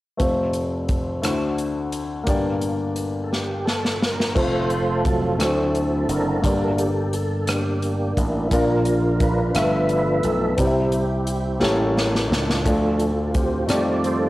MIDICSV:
0, 0, Header, 1, 5, 480
1, 0, Start_track
1, 0, Key_signature, -1, "major"
1, 0, Tempo, 692042
1, 140, Time_signature, 6, 3, 24, 8
1, 9914, End_track
2, 0, Start_track
2, 0, Title_t, "Tonewheel organ"
2, 0, Program_c, 0, 16
2, 2248, Note_on_c, 0, 69, 53
2, 2300, Note_off_c, 0, 69, 0
2, 2302, Note_on_c, 0, 67, 68
2, 2536, Note_on_c, 0, 69, 68
2, 2551, Note_off_c, 0, 67, 0
2, 2788, Note_off_c, 0, 69, 0
2, 2794, Note_on_c, 0, 70, 73
2, 3010, Note_on_c, 0, 57, 46
2, 3017, Note_on_c, 0, 60, 40
2, 3023, Note_on_c, 0, 65, 62
2, 3025, Note_on_c, 0, 72, 87
2, 3027, Note_on_c, 0, 69, 61
2, 3037, Note_off_c, 0, 70, 0
2, 3477, Note_off_c, 0, 72, 0
2, 3498, Note_off_c, 0, 69, 0
2, 3504, Note_off_c, 0, 60, 0
2, 3506, Note_on_c, 0, 69, 79
2, 3510, Note_on_c, 0, 54, 56
2, 3512, Note_on_c, 0, 60, 57
2, 3710, Note_off_c, 0, 57, 0
2, 3717, Note_off_c, 0, 65, 0
2, 3732, Note_off_c, 0, 60, 0
2, 3732, Note_on_c, 0, 50, 43
2, 3740, Note_on_c, 0, 60, 36
2, 3743, Note_on_c, 0, 64, 45
2, 4200, Note_off_c, 0, 54, 0
2, 4221, Note_off_c, 0, 69, 0
2, 4229, Note_on_c, 0, 62, 59
2, 4229, Note_on_c, 0, 69, 61
2, 4235, Note_on_c, 0, 70, 87
2, 4431, Note_off_c, 0, 50, 0
2, 4435, Note_off_c, 0, 60, 0
2, 4436, Note_off_c, 0, 64, 0
2, 4458, Note_on_c, 0, 55, 47
2, 4464, Note_off_c, 0, 62, 0
2, 4467, Note_on_c, 0, 58, 44
2, 4473, Note_on_c, 0, 62, 47
2, 4655, Note_on_c, 0, 66, 46
2, 4674, Note_off_c, 0, 70, 0
2, 4704, Note_off_c, 0, 66, 0
2, 4718, Note_on_c, 0, 67, 63
2, 4780, Note_off_c, 0, 55, 0
2, 4785, Note_off_c, 0, 58, 0
2, 4788, Note_off_c, 0, 62, 0
2, 4919, Note_off_c, 0, 69, 0
2, 4950, Note_on_c, 0, 69, 66
2, 4958, Note_off_c, 0, 67, 0
2, 5192, Note_on_c, 0, 62, 48
2, 5194, Note_off_c, 0, 69, 0
2, 5198, Note_on_c, 0, 58, 53
2, 5198, Note_on_c, 0, 67, 71
2, 5643, Note_off_c, 0, 67, 0
2, 5685, Note_on_c, 0, 64, 64
2, 5880, Note_off_c, 0, 62, 0
2, 5883, Note_off_c, 0, 58, 0
2, 5917, Note_on_c, 0, 70, 40
2, 5921, Note_off_c, 0, 64, 0
2, 5921, Note_on_c, 0, 53, 46
2, 5921, Note_on_c, 0, 62, 56
2, 5932, Note_on_c, 0, 65, 72
2, 6385, Note_off_c, 0, 62, 0
2, 6390, Note_off_c, 0, 65, 0
2, 6393, Note_on_c, 0, 62, 48
2, 6399, Note_on_c, 0, 65, 55
2, 6400, Note_on_c, 0, 71, 84
2, 6602, Note_off_c, 0, 70, 0
2, 6603, Note_off_c, 0, 53, 0
2, 6621, Note_on_c, 0, 53, 39
2, 6627, Note_on_c, 0, 57, 39
2, 6631, Note_on_c, 0, 59, 42
2, 6633, Note_on_c, 0, 76, 49
2, 7079, Note_off_c, 0, 62, 0
2, 7082, Note_off_c, 0, 65, 0
2, 7110, Note_on_c, 0, 69, 70
2, 7132, Note_off_c, 0, 71, 0
2, 7313, Note_off_c, 0, 53, 0
2, 7316, Note_off_c, 0, 57, 0
2, 7318, Note_off_c, 0, 59, 0
2, 7319, Note_off_c, 0, 76, 0
2, 7348, Note_on_c, 0, 55, 42
2, 7348, Note_on_c, 0, 64, 50
2, 7350, Note_on_c, 0, 60, 46
2, 7353, Note_off_c, 0, 69, 0
2, 7357, Note_on_c, 0, 67, 63
2, 7664, Note_off_c, 0, 55, 0
2, 7665, Note_off_c, 0, 60, 0
2, 8060, Note_on_c, 0, 55, 41
2, 8060, Note_on_c, 0, 58, 40
2, 8073, Note_on_c, 0, 61, 42
2, 8280, Note_off_c, 0, 64, 0
2, 8281, Note_off_c, 0, 67, 0
2, 8379, Note_off_c, 0, 55, 0
2, 8379, Note_off_c, 0, 58, 0
2, 8386, Note_off_c, 0, 61, 0
2, 8534, Note_on_c, 0, 62, 48
2, 8539, Note_on_c, 0, 65, 69
2, 8541, Note_on_c, 0, 69, 47
2, 8776, Note_off_c, 0, 62, 0
2, 8777, Note_on_c, 0, 53, 44
2, 8780, Note_on_c, 0, 57, 37
2, 8785, Note_on_c, 0, 62, 50
2, 9097, Note_off_c, 0, 53, 0
2, 9099, Note_off_c, 0, 57, 0
2, 9101, Note_off_c, 0, 62, 0
2, 9232, Note_off_c, 0, 69, 0
2, 9257, Note_off_c, 0, 65, 0
2, 9265, Note_on_c, 0, 60, 57
2, 9265, Note_on_c, 0, 65, 50
2, 9276, Note_on_c, 0, 67, 73
2, 9501, Note_on_c, 0, 51, 41
2, 9501, Note_on_c, 0, 55, 41
2, 9503, Note_on_c, 0, 57, 38
2, 9508, Note_on_c, 0, 74, 46
2, 9719, Note_off_c, 0, 67, 0
2, 9741, Note_on_c, 0, 69, 50
2, 9742, Note_on_c, 0, 63, 48
2, 9745, Note_on_c, 0, 72, 80
2, 9914, Note_off_c, 0, 51, 0
2, 9914, Note_off_c, 0, 55, 0
2, 9914, Note_off_c, 0, 57, 0
2, 9914, Note_off_c, 0, 60, 0
2, 9914, Note_off_c, 0, 63, 0
2, 9914, Note_off_c, 0, 65, 0
2, 9914, Note_off_c, 0, 69, 0
2, 9914, Note_off_c, 0, 72, 0
2, 9914, Note_off_c, 0, 74, 0
2, 9914, End_track
3, 0, Start_track
3, 0, Title_t, "Grand piano"
3, 0, Program_c, 1, 0
3, 120, Note_on_c, 1, 57, 49
3, 128, Note_on_c, 1, 60, 44
3, 133, Note_on_c, 1, 41, 47
3, 135, Note_on_c, 1, 29, 51
3, 139, Note_on_c, 1, 65, 42
3, 143, Note_on_c, 1, 72, 49
3, 277, Control_c, 1, 64, 127
3, 830, Note_off_c, 1, 41, 0
3, 831, Note_off_c, 1, 29, 0
3, 833, Note_off_c, 1, 57, 0
3, 844, Note_on_c, 1, 57, 51
3, 853, Note_off_c, 1, 72, 0
3, 853, Note_on_c, 1, 38, 52
3, 855, Note_on_c, 1, 50, 47
3, 855, Note_on_c, 1, 62, 51
3, 856, Note_off_c, 1, 60, 0
3, 861, Note_off_c, 1, 65, 0
3, 861, Note_on_c, 1, 64, 39
3, 864, Note_on_c, 1, 72, 52
3, 870, Control_c, 1, 64, 0
3, 900, Note_on_c, 1, 66, 46
3, 907, Note_off_c, 1, 64, 0
3, 1007, Control_c, 1, 64, 127
3, 1551, Note_off_c, 1, 38, 0
3, 1552, Note_off_c, 1, 50, 0
3, 1552, Note_on_c, 1, 58, 51
3, 1554, Note_off_c, 1, 62, 0
3, 1564, Note_on_c, 1, 62, 46
3, 1571, Note_on_c, 1, 31, 50
3, 1571, Note_on_c, 1, 43, 57
3, 1574, Note_off_c, 1, 57, 0
3, 1577, Note_on_c, 1, 67, 48
3, 1584, Note_off_c, 1, 72, 0
3, 1591, Control_c, 1, 64, 0
3, 1591, Note_on_c, 1, 74, 56
3, 1602, Note_off_c, 1, 66, 0
3, 1719, Control_c, 1, 64, 127
3, 2981, Note_off_c, 1, 58, 0
3, 2987, Note_off_c, 1, 62, 0
3, 2991, Note_off_c, 1, 31, 0
3, 2991, Note_off_c, 1, 43, 0
3, 2994, Note_off_c, 1, 67, 0
3, 3001, Note_off_c, 1, 74, 0
3, 3015, Note_on_c, 1, 57, 48
3, 3015, Note_on_c, 1, 60, 38
3, 3024, Note_on_c, 1, 65, 48
3, 3028, Note_on_c, 1, 72, 54
3, 3035, Control_c, 1, 64, 0
3, 3161, Control_c, 1, 64, 127
3, 3728, Note_off_c, 1, 57, 0
3, 3738, Note_on_c, 1, 57, 50
3, 3740, Note_off_c, 1, 60, 0
3, 3744, Note_off_c, 1, 65, 0
3, 3744, Note_on_c, 1, 62, 41
3, 3746, Note_off_c, 1, 72, 0
3, 3747, Note_on_c, 1, 50, 44
3, 3753, Note_on_c, 1, 66, 42
3, 3755, Control_c, 1, 64, 0
3, 3757, Note_on_c, 1, 72, 49
3, 3871, Control_c, 1, 64, 127
3, 4437, Note_on_c, 1, 58, 46
3, 4438, Note_off_c, 1, 50, 0
3, 4442, Note_off_c, 1, 62, 0
3, 4452, Note_on_c, 1, 62, 45
3, 4453, Note_on_c, 1, 43, 50
3, 4461, Note_off_c, 1, 57, 0
3, 4461, Note_on_c, 1, 67, 40
3, 4469, Note_off_c, 1, 66, 0
3, 4471, Note_off_c, 1, 72, 0
3, 4474, Control_c, 1, 64, 0
3, 4478, Note_on_c, 1, 74, 52
3, 4608, Control_c, 1, 64, 127
3, 5151, Note_off_c, 1, 43, 0
3, 5862, Note_off_c, 1, 58, 0
3, 5870, Note_off_c, 1, 62, 0
3, 5874, Note_off_c, 1, 67, 0
3, 5883, Note_off_c, 1, 74, 0
3, 5906, Note_on_c, 1, 58, 44
3, 5911, Control_c, 1, 64, 0
3, 5911, Note_on_c, 1, 62, 45
3, 5916, Note_on_c, 1, 65, 46
3, 5917, Note_on_c, 1, 46, 48
3, 5920, Note_on_c, 1, 74, 52
3, 6054, Control_c, 1, 64, 127
3, 6601, Note_off_c, 1, 46, 0
3, 6618, Note_off_c, 1, 65, 0
3, 6621, Note_on_c, 1, 57, 43
3, 6624, Note_off_c, 1, 58, 0
3, 6626, Note_off_c, 1, 62, 0
3, 6628, Note_on_c, 1, 65, 51
3, 6630, Control_c, 1, 64, 0
3, 6631, Note_off_c, 1, 74, 0
3, 6633, Note_on_c, 1, 69, 44
3, 6634, Note_on_c, 1, 43, 49
3, 6642, Note_on_c, 1, 76, 53
3, 6666, Note_on_c, 1, 59, 52
3, 6667, Note_off_c, 1, 57, 0
3, 6733, Control_c, 1, 64, 127
3, 7320, Note_off_c, 1, 43, 0
3, 7330, Note_on_c, 1, 60, 53
3, 7340, Note_on_c, 1, 48, 51
3, 7343, Note_on_c, 1, 64, 47
3, 7344, Note_off_c, 1, 65, 0
3, 7347, Note_off_c, 1, 69, 0
3, 7347, Note_on_c, 1, 67, 44
3, 7350, Note_on_c, 1, 74, 43
3, 7351, Note_off_c, 1, 76, 0
3, 7351, Control_c, 1, 64, 0
3, 7363, Note_off_c, 1, 59, 0
3, 7391, Note_off_c, 1, 74, 0
3, 7401, Note_on_c, 1, 76, 54
3, 7462, Control_c, 1, 64, 127
3, 8032, Note_off_c, 1, 48, 0
3, 8036, Note_off_c, 1, 67, 0
3, 8046, Note_on_c, 1, 58, 54
3, 8046, Note_on_c, 1, 67, 55
3, 8050, Note_on_c, 1, 45, 58
3, 8054, Note_on_c, 1, 69, 56
3, 8055, Note_off_c, 1, 60, 0
3, 8061, Note_off_c, 1, 64, 0
3, 8062, Note_on_c, 1, 73, 66
3, 8071, Control_c, 1, 64, 0
3, 8090, Note_off_c, 1, 76, 0
3, 8195, Control_c, 1, 64, 127
3, 8747, Note_off_c, 1, 45, 0
3, 8770, Note_on_c, 1, 57, 48
3, 8773, Note_off_c, 1, 58, 0
3, 8773, Note_off_c, 1, 67, 0
3, 8774, Note_on_c, 1, 62, 47
3, 8777, Note_off_c, 1, 69, 0
3, 8780, Note_off_c, 1, 73, 0
3, 8781, Note_on_c, 1, 50, 47
3, 8782, Note_on_c, 1, 65, 43
3, 8788, Control_c, 1, 64, 0
3, 8794, Note_on_c, 1, 74, 52
3, 8909, Control_c, 1, 64, 127
3, 9470, Note_off_c, 1, 57, 0
3, 9472, Note_off_c, 1, 50, 0
3, 9480, Note_on_c, 1, 57, 45
3, 9487, Note_on_c, 1, 63, 40
3, 9490, Note_off_c, 1, 74, 0
3, 9494, Note_on_c, 1, 67, 45
3, 9496, Note_off_c, 1, 62, 0
3, 9501, Note_off_c, 1, 65, 0
3, 9501, Note_on_c, 1, 74, 57
3, 9507, Control_c, 1, 64, 0
3, 9628, Control_c, 1, 64, 127
3, 9914, Note_off_c, 1, 57, 0
3, 9914, Note_off_c, 1, 63, 0
3, 9914, Note_off_c, 1, 67, 0
3, 9914, Note_off_c, 1, 74, 0
3, 9914, End_track
4, 0, Start_track
4, 0, Title_t, "Slap bass"
4, 0, Program_c, 2, 36
4, 3024, Note_on_c, 2, 29, 72
4, 3717, Note_off_c, 2, 29, 0
4, 3736, Note_on_c, 2, 38, 68
4, 4193, Note_off_c, 2, 38, 0
4, 4218, Note_on_c, 2, 30, 62
4, 4442, Note_off_c, 2, 30, 0
4, 4464, Note_on_c, 2, 31, 72
4, 5636, Note_off_c, 2, 31, 0
4, 5667, Note_on_c, 2, 33, 63
4, 5886, Note_off_c, 2, 33, 0
4, 5904, Note_on_c, 2, 34, 70
4, 6595, Note_off_c, 2, 34, 0
4, 6623, Note_on_c, 2, 31, 75
4, 7075, Note_off_c, 2, 31, 0
4, 7103, Note_on_c, 2, 35, 63
4, 7323, Note_off_c, 2, 35, 0
4, 7338, Note_on_c, 2, 36, 81
4, 8031, Note_off_c, 2, 36, 0
4, 8059, Note_on_c, 2, 33, 58
4, 8512, Note_off_c, 2, 33, 0
4, 8532, Note_on_c, 2, 37, 68
4, 8757, Note_off_c, 2, 37, 0
4, 8779, Note_on_c, 2, 38, 74
4, 9471, Note_off_c, 2, 38, 0
4, 9498, Note_on_c, 2, 41, 80
4, 9914, Note_off_c, 2, 41, 0
4, 9914, End_track
5, 0, Start_track
5, 0, Title_t, "Drums"
5, 135, Note_on_c, 9, 42, 49
5, 136, Note_on_c, 9, 36, 64
5, 204, Note_off_c, 9, 42, 0
5, 205, Note_off_c, 9, 36, 0
5, 370, Note_on_c, 9, 42, 39
5, 439, Note_off_c, 9, 42, 0
5, 614, Note_on_c, 9, 42, 36
5, 617, Note_on_c, 9, 36, 71
5, 684, Note_off_c, 9, 42, 0
5, 686, Note_off_c, 9, 36, 0
5, 856, Note_on_c, 9, 42, 59
5, 866, Note_on_c, 9, 37, 85
5, 926, Note_off_c, 9, 42, 0
5, 935, Note_off_c, 9, 37, 0
5, 1098, Note_on_c, 9, 42, 34
5, 1167, Note_off_c, 9, 42, 0
5, 1335, Note_on_c, 9, 42, 42
5, 1404, Note_off_c, 9, 42, 0
5, 1573, Note_on_c, 9, 42, 59
5, 1576, Note_on_c, 9, 36, 74
5, 1643, Note_off_c, 9, 42, 0
5, 1645, Note_off_c, 9, 36, 0
5, 1814, Note_on_c, 9, 42, 39
5, 1883, Note_off_c, 9, 42, 0
5, 2052, Note_on_c, 9, 42, 40
5, 2122, Note_off_c, 9, 42, 0
5, 2308, Note_on_c, 9, 38, 38
5, 2377, Note_off_c, 9, 38, 0
5, 2549, Note_on_c, 9, 38, 51
5, 2618, Note_off_c, 9, 38, 0
5, 2671, Note_on_c, 9, 38, 48
5, 2740, Note_off_c, 9, 38, 0
5, 2792, Note_on_c, 9, 38, 62
5, 2861, Note_off_c, 9, 38, 0
5, 2915, Note_on_c, 9, 38, 61
5, 2984, Note_off_c, 9, 38, 0
5, 3023, Note_on_c, 9, 36, 72
5, 3026, Note_on_c, 9, 49, 58
5, 3092, Note_off_c, 9, 36, 0
5, 3095, Note_off_c, 9, 49, 0
5, 3260, Note_on_c, 9, 42, 35
5, 3330, Note_off_c, 9, 42, 0
5, 3503, Note_on_c, 9, 36, 78
5, 3503, Note_on_c, 9, 42, 46
5, 3572, Note_off_c, 9, 36, 0
5, 3572, Note_off_c, 9, 42, 0
5, 3745, Note_on_c, 9, 42, 61
5, 3754, Note_on_c, 9, 37, 92
5, 3814, Note_off_c, 9, 42, 0
5, 3824, Note_off_c, 9, 37, 0
5, 3987, Note_on_c, 9, 42, 37
5, 4057, Note_off_c, 9, 42, 0
5, 4225, Note_on_c, 9, 42, 42
5, 4294, Note_off_c, 9, 42, 0
5, 4464, Note_on_c, 9, 36, 70
5, 4465, Note_on_c, 9, 42, 60
5, 4533, Note_off_c, 9, 36, 0
5, 4534, Note_off_c, 9, 42, 0
5, 4705, Note_on_c, 9, 42, 41
5, 4774, Note_off_c, 9, 42, 0
5, 4946, Note_on_c, 9, 42, 41
5, 5015, Note_off_c, 9, 42, 0
5, 5184, Note_on_c, 9, 42, 61
5, 5193, Note_on_c, 9, 37, 87
5, 5253, Note_off_c, 9, 42, 0
5, 5263, Note_off_c, 9, 37, 0
5, 5426, Note_on_c, 9, 42, 37
5, 5496, Note_off_c, 9, 42, 0
5, 5667, Note_on_c, 9, 36, 63
5, 5668, Note_on_c, 9, 42, 42
5, 5737, Note_off_c, 9, 36, 0
5, 5737, Note_off_c, 9, 42, 0
5, 5904, Note_on_c, 9, 36, 76
5, 5904, Note_on_c, 9, 42, 65
5, 5974, Note_off_c, 9, 36, 0
5, 5974, Note_off_c, 9, 42, 0
5, 6141, Note_on_c, 9, 42, 42
5, 6210, Note_off_c, 9, 42, 0
5, 6383, Note_on_c, 9, 42, 43
5, 6385, Note_on_c, 9, 36, 79
5, 6453, Note_off_c, 9, 42, 0
5, 6454, Note_off_c, 9, 36, 0
5, 6623, Note_on_c, 9, 42, 65
5, 6632, Note_on_c, 9, 37, 91
5, 6692, Note_off_c, 9, 42, 0
5, 6702, Note_off_c, 9, 37, 0
5, 6861, Note_on_c, 9, 42, 37
5, 6930, Note_off_c, 9, 42, 0
5, 7098, Note_on_c, 9, 42, 40
5, 7168, Note_off_c, 9, 42, 0
5, 7337, Note_on_c, 9, 42, 61
5, 7340, Note_on_c, 9, 36, 69
5, 7406, Note_off_c, 9, 42, 0
5, 7409, Note_off_c, 9, 36, 0
5, 7574, Note_on_c, 9, 42, 36
5, 7643, Note_off_c, 9, 42, 0
5, 7816, Note_on_c, 9, 42, 41
5, 7885, Note_off_c, 9, 42, 0
5, 8064, Note_on_c, 9, 38, 45
5, 8134, Note_off_c, 9, 38, 0
5, 8305, Note_on_c, 9, 38, 58
5, 8375, Note_off_c, 9, 38, 0
5, 8428, Note_on_c, 9, 38, 47
5, 8497, Note_off_c, 9, 38, 0
5, 8547, Note_on_c, 9, 38, 69
5, 8616, Note_off_c, 9, 38, 0
5, 8667, Note_on_c, 9, 38, 61
5, 8736, Note_off_c, 9, 38, 0
5, 8778, Note_on_c, 9, 36, 66
5, 8778, Note_on_c, 9, 42, 62
5, 8847, Note_off_c, 9, 36, 0
5, 8848, Note_off_c, 9, 42, 0
5, 9012, Note_on_c, 9, 42, 39
5, 9081, Note_off_c, 9, 42, 0
5, 9255, Note_on_c, 9, 42, 45
5, 9257, Note_on_c, 9, 36, 79
5, 9324, Note_off_c, 9, 42, 0
5, 9327, Note_off_c, 9, 36, 0
5, 9492, Note_on_c, 9, 42, 57
5, 9502, Note_on_c, 9, 37, 82
5, 9562, Note_off_c, 9, 42, 0
5, 9571, Note_off_c, 9, 37, 0
5, 9739, Note_on_c, 9, 42, 37
5, 9808, Note_off_c, 9, 42, 0
5, 9914, End_track
0, 0, End_of_file